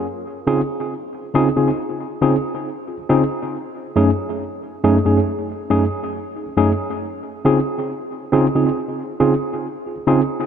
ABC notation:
X:1
M:4/4
L:1/16
Q:1/4=69
K:Db
V:1 name="Tine electric piano"
z2 [D,CEFA] z3 [D,CEFA] [D,CEFA] z2 [D,CEFA] z2 [FA] [D,CEFA] z | z2 [G,,=A,DE_A] z3 [G,,=A,DE_A] [G,,=A,DE_A] z2 [G,,=A,DE_A] z2 [EA] [G,,=A,DE_A] z | z2 [D,CEFA] z3 [D,CEFA] [D,CEFA] z2 [D,CEFA] z2 [FA] [D,CEFA] z |]